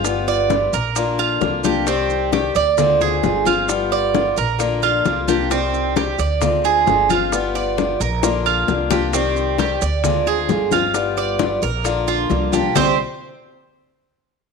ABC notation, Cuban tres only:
X:1
M:4/4
L:1/8
Q:1/4=132
K:Cm
V:1 name="Cuban tres"
F d2 B2 F2 G | C2 G d2 A2 F- | F d2 B2 F2 G | C2 G d2 A2 F- |
F d2 B2 F2 G | C2 G d2 A2 F- | F d2 B2 F2 G | [CGc] z6 z |]